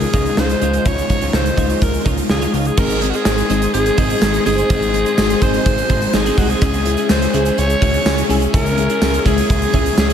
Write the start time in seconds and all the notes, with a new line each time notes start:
Already playing: C#3 G#3 C#4 D#4 F4 G#4
0.01 muted clean electric guitar stroke, closed hi-hat, shaker
0.13 C#2 G#3 C#4 D#4 F4 C#5, kick, closed hi-hat, shaker
0.26 muted clean electric guitar stroke, closed hi-hat, shaker
0.37 C#2 G#3 C#4 D#4 F4 C5, muted clean electric guitar stroke, snare, shaker
0.49 muted clean electric guitar stroke, closed hi-hat, shaker
0.61 C#2 G#3 C#4 D#4 F4 C#5, closed hi-hat, shaker
0.73 muted clean electric guitar stroke, closed hi-hat, shaker
0.85 C#2 G#3 C#4 D#4 F4 C#5, kick, closed hi-hat, shaker
0.97 muted clean electric guitar stroke, closed hi-hat, shaker
1.09 G#3 C#4 D#4 F4, muted clean electric guitar stroke, kick, closed hi-hat, shaker
1.21 C#2 D#4 F4 C#5, closed hi-hat, shaker
1.33 C#2 G#3 C#4 D#4 F4 C5, snare, shaker
1.45 muted clean electric guitar stroke, closed hi-hat, shaker
1.56 C#2 G#3 C#4 D#4 F4 C#5, kick, closed hi-hat, shaker
1.69 D#4 F4 C#5, closed hi-hat, shaker
1.81 C#2 G#3 C#4 D#4 F4 A#4, muted clean electric guitar stroke, kick, closed hi-hat, shaker
1.93 muted clean electric guitar stroke, closed hi-hat, shaker
2.05 C#2 G#3 C#4 D#4 F4 C#5, kick, closed hi-hat, shaker
2.17 muted clean electric guitar stroke, closed hi-hat, shaker
2.29 C#2 G#3 C#4 D#4 F4 G#4, muted clean electric guitar stroke, snare, shaker
2.41 D#4 F4 C#5, closed hi-hat, shaker
2.52 C#2 G#3 C#4 D#4 F4 C#5, open hi-hat, shaker
2.65 G#4, muted clean electric guitar stroke, closed hi-hat, shaker
2.77 G#1 G#2 D#3 G#3 C4 D#4 G#4 A#4 C5 D#5 C6, kick, crash, shaker
2.90 muted clean electric guitar stroke, closed hi-hat, shaker
3.02 G#3 C4 D#4 G#4, muted clean electric guitar stroke, closed hi-hat
3.10 F#4 G#4, closed hi-hat, shaker
3.15 C4 D#4 G#4
3.25 G#1 G#2 D#3 G#3 C4 D#4 G#4, muted clean electric guitar stroke, snare, tambourine, shaker
3.38 muted clean electric guitar stroke, closed hi-hat, shaker
3.49 G#1 G#3 C4 D#4 G#4, closed hi-hat, shaker
3.62 C4 D#4 G#4, closed hi-hat, shaker
3.73 G#1 G#2 D#3 G#3 C4 D#4 G#4, muted clean electric guitar stroke, closed hi-hat, shaker
3.86 muted clean electric guitar stroke, closed hi-hat, shaker
3.97 G#1 G#3 C4 D#4 G#4, kick, closed hi-hat
4.10 muted clean electric guitar stroke, closed hi-hat, shaker
4.21 G#1 G#3 C4 D#4 G#4, muted clean electric guitar stroke, snare, tambourine, shaker
4.34 muted clean electric guitar stroke, closed hi-hat, shaker
4.45 G1 D#3 G#3 C4 D#4 G#4, open hi-hat, shaker
4.58 muted clean electric guitar stroke, closed hi-hat, shaker
4.69 G#1 G#2 D#3 G#3 C4 D#4 G#4, kick, closed hi-hat, shaker
4.82 muted clean electric guitar stroke, closed hi-hat, shaker
4.93 G#3 C4 D#4 G#4, muted clean electric guitar stroke, closed hi-hat
5.05 C4 D#4 G#4, closed hi-hat, shaker
5.17 G#1 G#2 D#3 G#3 C4 D#4 F#4, muted clean electric guitar stroke, snare, tambourine, shaker
5.29 muted clean electric guitar stroke, closed hi-hat, shaker
5.41 G#1 G#3 C4 D#4 G#4 C5, kick, closed hi-hat, shaker
5.53 C4 D#4 G#4, closed hi-hat, shaker
5.65 G#1 G#2 D#3 G#3 C4 D#4 G#4, muted clean electric guitar stroke, kick, closed hi-hat, shaker
5.77 muted clean electric guitar stroke, closed hi-hat, shaker
5.89 G#1 G#3 C4 D#4 G#4, kick, closed hi-hat
6.01 muted clean electric guitar stroke, closed hi-hat, shaker
6.13 G#1 G#3 C4 D#4 G#4, muted clean electric guitar stroke, snare, tambourine, shaker
6.25 C4 D#4 G#4, closed hi-hat, shaker
6.37 C2 D#3 G#3 C4 D#4 F#4 G#4, kick, open hi-hat, shaker
6.49 G#4, muted clean electric guitar stroke, closed hi-hat, shaker
6.61 C#2 C#3 G#3 C#4 E4 G#4 E5 G#5, kick, closed hi-hat, shaker
6.74 muted clean electric guitar stroke, closed hi-hat, shaker
6.85 G#3 C#4 E4 G#4, muted clean electric guitar stroke, closed hi-hat
6.97 C#4 E4 G#4, closed hi-hat, shaker
7.09 C#2 C#3 G#3 C#4 E4 G#4 C5, muted clean electric guitar stroke, snare, tambourine, shaker
7.22 muted clean electric guitar stroke, closed hi-hat, shaker
7.33 C#2 G#3 C#4 E4 G#4, closed hi-hat, shaker
7.45 C#4 E4 G#4, closed hi-hat, shaker
7.57 C#2 C#3 G#3 C#4 E4 G#4 C#5, muted clean electric guitar stroke, closed hi-hat, shaker
7.70 muted clean electric guitar stroke, closed hi-hat, shaker
7.81 C#2 G#3 C#4 E4 F#4 G#4, kick, closed hi-hat
7.93 muted clean electric guitar stroke, closed hi-hat, shaker
8.05 C#2 G#3 C#4 E4 G#4, muted clean electric guitar stroke, snare, tambourine, shaker
8.18 muted clean electric guitar stroke, closed hi-hat, shaker
8.29 C2 G#3 C#4 E4 G#4, open hi-hat, shaker
8.42 muted clean electric guitar stroke, closed hi-hat, shaker
8.53 C#2 C#3 G#3 C#4 E4 G#4 A#4, kick, closed hi-hat, shaker
8.58 C#4
8.66 muted clean electric guitar stroke, closed hi-hat, shaker
8.77 G#3 C#4 E4 G#4, muted clean electric guitar stroke, closed hi-hat
8.89 C#4 E4 G#4, closed hi-hat, shaker
9.01 C#2 G#3 C#4 E4 G#4, muted clean electric guitar stroke, snare, tambourine, shaker
9.13 muted clean electric guitar stroke, closed hi-hat, shaker
9.25 C#2 G#3 C#4 E4 G#4, kick, closed hi-hat, shaker
9.37 C#4 E4 G#4, closed hi-hat, shaker
9.49 C#2 C#3 G#3 C#4 E4 G#4, muted clean electric guitar stroke, kick, closed hi-hat, shaker
9.62 muted clean electric guitar stroke, closed hi-hat, shaker
9.73 C#2 G#3 C#4 E4 G#4, kick, closed hi-hat
9.86 muted clean electric guitar stroke, closed hi-hat, shaker
9.97 C#2 G#3 C#4 E4 G#4, muted clean electric guitar stroke, snare, tambourine, shaker
10.09 E4 G#4, closed hi-hat, shaker